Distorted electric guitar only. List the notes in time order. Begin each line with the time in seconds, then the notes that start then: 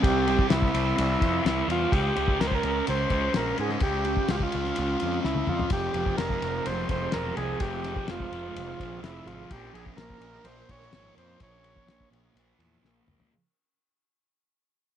0.03 C3 G3 C4
0.27 G3 C4
0.50 C3 G3 C4
0.73 G3 C4
0.97 C3 G3 C4
1.20 G3 C4
1.44 C3 G3 C4
1.91 C#3 G#3 C#4
2.15 G#3 C#4
2.40 C#3 G#3 C#4
2.63 G#3 C#4
2.87 C#3 G#3 C#4
3.11 G#3 C#4
3.33 C#3 G#3 C#4
3.81 C#3 G#3 C#4
4.05 G#3 C#4
4.31 C#3 G#3 C#4
4.55 G#3 C#4
4.77 C#3 G#3 C#4
5.01 G#3 C#4
5.24 C#3 G#3 C#4
5.72 F2 C3 F3
5.96 C3 F3
6.20 F2 C3 F3
6.42 C3 F3
6.67 F2 C3 F3
6.90 C3 F3
7.14 F2 C3 F3
7.60 F2 C3 F3
7.84 C3 F3
8.08 F2 C3 F3
8.32 C3 F3
8.55 F2 C3 F3
8.80 C3 F3
9.03 F2 C3 F3
9.51 A#2 F3 A#3
9.74 F3 A#3
9.99 A#2 F3 A#3
10.23 F3 A#3
10.46 A#2 F3 A#3
10.71 F3 A#3
10.96 A#2 F3 A#3
11.42 A#2 F3 A#3
11.65 F3 A#3
11.88 A#2 F3 A#3
12.13 F3 A#3
12.37 A#2 F3 A#3
12.60 F3 A#3
12.83 A#2 F3 A#3